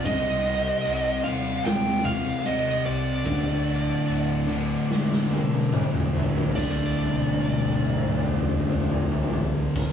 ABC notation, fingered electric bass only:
X:1
M:4/4
L:1/8
Q:1/4=73
K:Dphr
V:1 name="Fingered electric bass" clef=bass
C,,2 C,, E,,, E,,,2 E,,, C,, | D,,,2 D,,,2 F,,,2 A,,, A,,, | D,,,8 |]